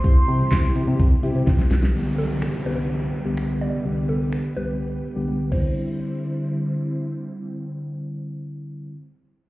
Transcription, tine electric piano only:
\new Staff \with { instrumentName = "Tine electric piano" } { \time 4/4 \key c \major \tempo 4 = 126 <c' e' g'>8. r16 <c' e' g'>4 r8 <c' e' g'>4 r8 | <c, d g b g'>4 r8 <c, d g b g'>8. r8 <c, d g b g'>8. r8 | <c, d g b g'>4 r8 <c, d g b g'>8. r8 <c, d g b g'>8. <d g c' e'>8~ | <d g c' e'>1~ |
<d g c' e'>1 | }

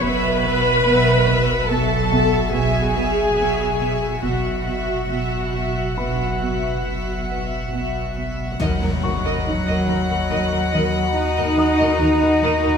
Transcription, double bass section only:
\new Staff \with { instrumentName = "Double bass section" } { \clef bass \time 5/4 \key b \dorian \tempo 4 = 70 b,,4 b,,4 b,,4 b,,4 b,,4 | b,,4 b,,4 b,,4 b,,4 b,,4 | \key ees \minor ees,16 ees,16 ees,16 ees,16 r16 ees,16 ees,16 ees,16 ees,16 ees,16 ees,16 r8 ees,16 r16 ees,16 ees,16 ees,16 ees,16 ees,16 | }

